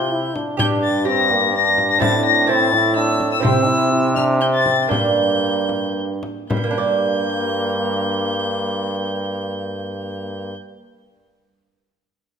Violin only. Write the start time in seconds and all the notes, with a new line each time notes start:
Already playing: G6
0.59 G6
0.83 A6
1.07 A#6
1.55 A#6
1.91 A#6
2.02 A6
2.25 A#6
2.50 A6
2.97 E6
3.32 E6
3.44 E6
4.16 F6
4.41 G6
4.54 A6
4.91 G6
6.50 G6